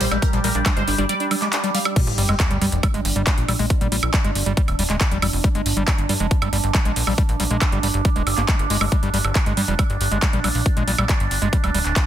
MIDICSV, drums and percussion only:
0, 0, Header, 1, 2, 480
1, 0, Start_track
1, 0, Tempo, 434783
1, 247, Time_signature, 4, 2, 24, 8
1, 13319, End_track
2, 0, Start_track
2, 0, Title_t, "Drums"
2, 7, Note_on_c, 9, 46, 99
2, 117, Note_off_c, 9, 46, 0
2, 127, Note_on_c, 9, 76, 42
2, 237, Note_off_c, 9, 76, 0
2, 247, Note_on_c, 9, 36, 113
2, 247, Note_on_c, 9, 42, 106
2, 357, Note_off_c, 9, 36, 0
2, 357, Note_off_c, 9, 42, 0
2, 367, Note_on_c, 9, 42, 39
2, 477, Note_off_c, 9, 42, 0
2, 487, Note_on_c, 9, 46, 104
2, 597, Note_off_c, 9, 46, 0
2, 607, Note_on_c, 9, 42, 41
2, 717, Note_off_c, 9, 42, 0
2, 727, Note_on_c, 9, 36, 124
2, 727, Note_on_c, 9, 39, 127
2, 727, Note_on_c, 9, 42, 99
2, 727, Note_on_c, 9, 76, 79
2, 837, Note_off_c, 9, 36, 0
2, 837, Note_off_c, 9, 39, 0
2, 837, Note_off_c, 9, 42, 0
2, 837, Note_off_c, 9, 76, 0
2, 847, Note_on_c, 9, 42, 40
2, 957, Note_off_c, 9, 42, 0
2, 966, Note_on_c, 9, 46, 106
2, 1077, Note_off_c, 9, 46, 0
2, 1087, Note_on_c, 9, 42, 43
2, 1197, Note_off_c, 9, 42, 0
2, 1206, Note_on_c, 9, 42, 95
2, 1317, Note_off_c, 9, 42, 0
2, 1327, Note_on_c, 9, 42, 40
2, 1437, Note_off_c, 9, 42, 0
2, 1447, Note_on_c, 9, 46, 101
2, 1447, Note_on_c, 9, 76, 40
2, 1557, Note_off_c, 9, 46, 0
2, 1557, Note_off_c, 9, 76, 0
2, 1567, Note_on_c, 9, 39, 39
2, 1567, Note_on_c, 9, 42, 42
2, 1677, Note_off_c, 9, 39, 0
2, 1677, Note_off_c, 9, 42, 0
2, 1687, Note_on_c, 9, 39, 120
2, 1687, Note_on_c, 9, 42, 98
2, 1797, Note_off_c, 9, 39, 0
2, 1797, Note_off_c, 9, 42, 0
2, 1807, Note_on_c, 9, 42, 41
2, 1917, Note_off_c, 9, 42, 0
2, 1927, Note_on_c, 9, 46, 103
2, 2037, Note_off_c, 9, 46, 0
2, 2047, Note_on_c, 9, 76, 82
2, 2157, Note_off_c, 9, 76, 0
2, 2167, Note_on_c, 9, 36, 117
2, 2167, Note_on_c, 9, 42, 108
2, 2167, Note_on_c, 9, 49, 116
2, 2277, Note_off_c, 9, 36, 0
2, 2277, Note_off_c, 9, 42, 0
2, 2277, Note_off_c, 9, 49, 0
2, 2287, Note_on_c, 9, 42, 42
2, 2397, Note_off_c, 9, 42, 0
2, 2407, Note_on_c, 9, 46, 109
2, 2517, Note_off_c, 9, 46, 0
2, 2527, Note_on_c, 9, 76, 38
2, 2637, Note_off_c, 9, 76, 0
2, 2647, Note_on_c, 9, 36, 123
2, 2647, Note_on_c, 9, 39, 127
2, 2647, Note_on_c, 9, 42, 103
2, 2757, Note_off_c, 9, 36, 0
2, 2757, Note_off_c, 9, 39, 0
2, 2757, Note_off_c, 9, 42, 0
2, 2767, Note_on_c, 9, 42, 40
2, 2877, Note_off_c, 9, 42, 0
2, 2887, Note_on_c, 9, 46, 103
2, 2997, Note_off_c, 9, 46, 0
2, 3007, Note_on_c, 9, 42, 45
2, 3117, Note_off_c, 9, 42, 0
2, 3127, Note_on_c, 9, 36, 119
2, 3127, Note_on_c, 9, 42, 95
2, 3127, Note_on_c, 9, 76, 73
2, 3237, Note_off_c, 9, 36, 0
2, 3237, Note_off_c, 9, 42, 0
2, 3237, Note_off_c, 9, 76, 0
2, 3247, Note_on_c, 9, 42, 42
2, 3357, Note_off_c, 9, 42, 0
2, 3367, Note_on_c, 9, 46, 109
2, 3477, Note_off_c, 9, 46, 0
2, 3487, Note_on_c, 9, 42, 44
2, 3597, Note_off_c, 9, 42, 0
2, 3607, Note_on_c, 9, 36, 121
2, 3607, Note_on_c, 9, 39, 123
2, 3607, Note_on_c, 9, 42, 97
2, 3717, Note_off_c, 9, 36, 0
2, 3717, Note_off_c, 9, 39, 0
2, 3717, Note_off_c, 9, 42, 0
2, 3727, Note_on_c, 9, 42, 39
2, 3838, Note_off_c, 9, 42, 0
2, 3847, Note_on_c, 9, 46, 103
2, 3847, Note_on_c, 9, 76, 39
2, 3958, Note_off_c, 9, 46, 0
2, 3958, Note_off_c, 9, 76, 0
2, 3967, Note_on_c, 9, 46, 62
2, 4077, Note_off_c, 9, 46, 0
2, 4087, Note_on_c, 9, 36, 119
2, 4087, Note_on_c, 9, 42, 97
2, 4197, Note_off_c, 9, 36, 0
2, 4197, Note_off_c, 9, 42, 0
2, 4207, Note_on_c, 9, 42, 40
2, 4317, Note_off_c, 9, 42, 0
2, 4327, Note_on_c, 9, 46, 115
2, 4437, Note_off_c, 9, 46, 0
2, 4447, Note_on_c, 9, 42, 40
2, 4447, Note_on_c, 9, 76, 75
2, 4557, Note_off_c, 9, 42, 0
2, 4557, Note_off_c, 9, 76, 0
2, 4567, Note_on_c, 9, 36, 124
2, 4567, Note_on_c, 9, 39, 127
2, 4567, Note_on_c, 9, 42, 100
2, 4677, Note_off_c, 9, 36, 0
2, 4677, Note_off_c, 9, 39, 0
2, 4677, Note_off_c, 9, 42, 0
2, 4687, Note_on_c, 9, 42, 39
2, 4797, Note_off_c, 9, 42, 0
2, 4806, Note_on_c, 9, 46, 108
2, 4917, Note_off_c, 9, 46, 0
2, 4927, Note_on_c, 9, 42, 40
2, 5037, Note_off_c, 9, 42, 0
2, 5047, Note_on_c, 9, 36, 127
2, 5047, Note_on_c, 9, 42, 93
2, 5157, Note_off_c, 9, 36, 0
2, 5157, Note_off_c, 9, 42, 0
2, 5167, Note_on_c, 9, 42, 39
2, 5167, Note_on_c, 9, 76, 38
2, 5277, Note_off_c, 9, 42, 0
2, 5277, Note_off_c, 9, 76, 0
2, 5287, Note_on_c, 9, 46, 113
2, 5397, Note_off_c, 9, 46, 0
2, 5407, Note_on_c, 9, 39, 40
2, 5407, Note_on_c, 9, 42, 41
2, 5517, Note_off_c, 9, 39, 0
2, 5517, Note_off_c, 9, 42, 0
2, 5527, Note_on_c, 9, 36, 119
2, 5527, Note_on_c, 9, 39, 125
2, 5527, Note_on_c, 9, 42, 94
2, 5637, Note_off_c, 9, 36, 0
2, 5637, Note_off_c, 9, 39, 0
2, 5637, Note_off_c, 9, 42, 0
2, 5647, Note_on_c, 9, 42, 38
2, 5757, Note_off_c, 9, 42, 0
2, 5767, Note_on_c, 9, 46, 112
2, 5767, Note_on_c, 9, 76, 74
2, 5877, Note_off_c, 9, 46, 0
2, 5877, Note_off_c, 9, 76, 0
2, 5887, Note_on_c, 9, 46, 64
2, 5997, Note_off_c, 9, 46, 0
2, 6007, Note_on_c, 9, 36, 119
2, 6007, Note_on_c, 9, 42, 96
2, 6117, Note_off_c, 9, 36, 0
2, 6117, Note_off_c, 9, 42, 0
2, 6127, Note_on_c, 9, 42, 37
2, 6237, Note_off_c, 9, 42, 0
2, 6247, Note_on_c, 9, 46, 113
2, 6357, Note_off_c, 9, 46, 0
2, 6367, Note_on_c, 9, 42, 40
2, 6477, Note_off_c, 9, 42, 0
2, 6487, Note_on_c, 9, 36, 127
2, 6487, Note_on_c, 9, 39, 127
2, 6487, Note_on_c, 9, 42, 99
2, 6487, Note_on_c, 9, 76, 43
2, 6597, Note_off_c, 9, 36, 0
2, 6597, Note_off_c, 9, 39, 0
2, 6597, Note_off_c, 9, 42, 0
2, 6597, Note_off_c, 9, 76, 0
2, 6607, Note_on_c, 9, 42, 36
2, 6717, Note_off_c, 9, 42, 0
2, 6726, Note_on_c, 9, 46, 112
2, 6837, Note_off_c, 9, 46, 0
2, 6847, Note_on_c, 9, 42, 39
2, 6957, Note_off_c, 9, 42, 0
2, 6966, Note_on_c, 9, 42, 88
2, 6967, Note_on_c, 9, 36, 127
2, 7077, Note_off_c, 9, 36, 0
2, 7077, Note_off_c, 9, 42, 0
2, 7086, Note_on_c, 9, 42, 37
2, 7086, Note_on_c, 9, 76, 76
2, 7197, Note_off_c, 9, 42, 0
2, 7197, Note_off_c, 9, 76, 0
2, 7206, Note_on_c, 9, 46, 109
2, 7317, Note_off_c, 9, 46, 0
2, 7326, Note_on_c, 9, 42, 40
2, 7437, Note_off_c, 9, 42, 0
2, 7446, Note_on_c, 9, 39, 121
2, 7446, Note_on_c, 9, 42, 92
2, 7447, Note_on_c, 9, 36, 124
2, 7557, Note_off_c, 9, 36, 0
2, 7557, Note_off_c, 9, 39, 0
2, 7557, Note_off_c, 9, 42, 0
2, 7566, Note_on_c, 9, 42, 39
2, 7677, Note_off_c, 9, 42, 0
2, 7686, Note_on_c, 9, 46, 115
2, 7797, Note_off_c, 9, 46, 0
2, 7807, Note_on_c, 9, 46, 63
2, 7807, Note_on_c, 9, 76, 39
2, 7917, Note_off_c, 9, 46, 0
2, 7917, Note_off_c, 9, 76, 0
2, 7926, Note_on_c, 9, 42, 94
2, 7927, Note_on_c, 9, 36, 126
2, 8037, Note_off_c, 9, 36, 0
2, 8037, Note_off_c, 9, 42, 0
2, 8046, Note_on_c, 9, 42, 37
2, 8157, Note_off_c, 9, 42, 0
2, 8166, Note_on_c, 9, 46, 111
2, 8277, Note_off_c, 9, 46, 0
2, 8287, Note_on_c, 9, 42, 39
2, 8397, Note_off_c, 9, 42, 0
2, 8407, Note_on_c, 9, 36, 127
2, 8407, Note_on_c, 9, 39, 122
2, 8407, Note_on_c, 9, 42, 92
2, 8407, Note_on_c, 9, 76, 85
2, 8517, Note_off_c, 9, 36, 0
2, 8517, Note_off_c, 9, 39, 0
2, 8517, Note_off_c, 9, 42, 0
2, 8517, Note_off_c, 9, 76, 0
2, 8527, Note_on_c, 9, 42, 40
2, 8637, Note_off_c, 9, 42, 0
2, 8647, Note_on_c, 9, 46, 106
2, 8757, Note_off_c, 9, 46, 0
2, 8766, Note_on_c, 9, 42, 39
2, 8877, Note_off_c, 9, 42, 0
2, 8886, Note_on_c, 9, 42, 89
2, 8887, Note_on_c, 9, 36, 127
2, 8997, Note_off_c, 9, 36, 0
2, 8997, Note_off_c, 9, 42, 0
2, 9007, Note_on_c, 9, 42, 36
2, 9117, Note_off_c, 9, 42, 0
2, 9127, Note_on_c, 9, 46, 106
2, 9127, Note_on_c, 9, 76, 39
2, 9237, Note_off_c, 9, 46, 0
2, 9237, Note_off_c, 9, 76, 0
2, 9247, Note_on_c, 9, 39, 37
2, 9247, Note_on_c, 9, 42, 40
2, 9357, Note_off_c, 9, 39, 0
2, 9357, Note_off_c, 9, 42, 0
2, 9367, Note_on_c, 9, 36, 122
2, 9367, Note_on_c, 9, 39, 112
2, 9367, Note_on_c, 9, 42, 87
2, 9477, Note_off_c, 9, 36, 0
2, 9477, Note_off_c, 9, 39, 0
2, 9477, Note_off_c, 9, 42, 0
2, 9487, Note_on_c, 9, 42, 38
2, 9597, Note_off_c, 9, 42, 0
2, 9607, Note_on_c, 9, 46, 112
2, 9717, Note_off_c, 9, 46, 0
2, 9727, Note_on_c, 9, 76, 80
2, 9837, Note_off_c, 9, 76, 0
2, 9847, Note_on_c, 9, 36, 124
2, 9847, Note_on_c, 9, 42, 100
2, 9957, Note_off_c, 9, 36, 0
2, 9957, Note_off_c, 9, 42, 0
2, 9967, Note_on_c, 9, 42, 37
2, 10077, Note_off_c, 9, 42, 0
2, 10087, Note_on_c, 9, 46, 108
2, 10197, Note_off_c, 9, 46, 0
2, 10207, Note_on_c, 9, 42, 39
2, 10207, Note_on_c, 9, 76, 42
2, 10317, Note_off_c, 9, 42, 0
2, 10317, Note_off_c, 9, 76, 0
2, 10327, Note_on_c, 9, 36, 116
2, 10327, Note_on_c, 9, 39, 125
2, 10327, Note_on_c, 9, 42, 91
2, 10437, Note_off_c, 9, 36, 0
2, 10437, Note_off_c, 9, 39, 0
2, 10437, Note_off_c, 9, 42, 0
2, 10447, Note_on_c, 9, 42, 36
2, 10557, Note_off_c, 9, 42, 0
2, 10567, Note_on_c, 9, 46, 109
2, 10677, Note_off_c, 9, 46, 0
2, 10687, Note_on_c, 9, 42, 39
2, 10797, Note_off_c, 9, 42, 0
2, 10807, Note_on_c, 9, 36, 124
2, 10807, Note_on_c, 9, 42, 94
2, 10807, Note_on_c, 9, 76, 83
2, 10917, Note_off_c, 9, 36, 0
2, 10917, Note_off_c, 9, 42, 0
2, 10917, Note_off_c, 9, 76, 0
2, 10927, Note_on_c, 9, 42, 38
2, 11037, Note_off_c, 9, 42, 0
2, 11047, Note_on_c, 9, 46, 109
2, 11157, Note_off_c, 9, 46, 0
2, 11167, Note_on_c, 9, 42, 39
2, 11278, Note_off_c, 9, 42, 0
2, 11287, Note_on_c, 9, 36, 117
2, 11287, Note_on_c, 9, 39, 116
2, 11287, Note_on_c, 9, 42, 89
2, 11397, Note_off_c, 9, 36, 0
2, 11398, Note_off_c, 9, 39, 0
2, 11398, Note_off_c, 9, 42, 0
2, 11407, Note_on_c, 9, 42, 38
2, 11517, Note_off_c, 9, 42, 0
2, 11527, Note_on_c, 9, 46, 108
2, 11527, Note_on_c, 9, 76, 42
2, 11638, Note_off_c, 9, 46, 0
2, 11638, Note_off_c, 9, 76, 0
2, 11647, Note_on_c, 9, 46, 61
2, 11758, Note_off_c, 9, 46, 0
2, 11767, Note_on_c, 9, 36, 110
2, 11767, Note_on_c, 9, 42, 92
2, 11877, Note_off_c, 9, 36, 0
2, 11878, Note_off_c, 9, 42, 0
2, 11887, Note_on_c, 9, 42, 40
2, 11997, Note_off_c, 9, 42, 0
2, 12007, Note_on_c, 9, 46, 102
2, 12117, Note_off_c, 9, 46, 0
2, 12127, Note_on_c, 9, 42, 39
2, 12127, Note_on_c, 9, 76, 83
2, 12237, Note_off_c, 9, 42, 0
2, 12237, Note_off_c, 9, 76, 0
2, 12247, Note_on_c, 9, 36, 117
2, 12247, Note_on_c, 9, 39, 125
2, 12247, Note_on_c, 9, 42, 96
2, 12357, Note_off_c, 9, 36, 0
2, 12357, Note_off_c, 9, 39, 0
2, 12357, Note_off_c, 9, 42, 0
2, 12367, Note_on_c, 9, 42, 41
2, 12477, Note_off_c, 9, 42, 0
2, 12487, Note_on_c, 9, 46, 104
2, 12597, Note_off_c, 9, 46, 0
2, 12607, Note_on_c, 9, 42, 40
2, 12717, Note_off_c, 9, 42, 0
2, 12727, Note_on_c, 9, 36, 119
2, 12727, Note_on_c, 9, 42, 90
2, 12837, Note_off_c, 9, 36, 0
2, 12837, Note_off_c, 9, 42, 0
2, 12847, Note_on_c, 9, 42, 38
2, 12847, Note_on_c, 9, 76, 40
2, 12957, Note_off_c, 9, 42, 0
2, 12957, Note_off_c, 9, 76, 0
2, 12967, Note_on_c, 9, 46, 102
2, 13077, Note_off_c, 9, 46, 0
2, 13087, Note_on_c, 9, 39, 37
2, 13087, Note_on_c, 9, 42, 41
2, 13197, Note_off_c, 9, 39, 0
2, 13197, Note_off_c, 9, 42, 0
2, 13207, Note_on_c, 9, 36, 114
2, 13207, Note_on_c, 9, 39, 110
2, 13207, Note_on_c, 9, 42, 92
2, 13317, Note_off_c, 9, 36, 0
2, 13317, Note_off_c, 9, 39, 0
2, 13317, Note_off_c, 9, 42, 0
2, 13319, End_track
0, 0, End_of_file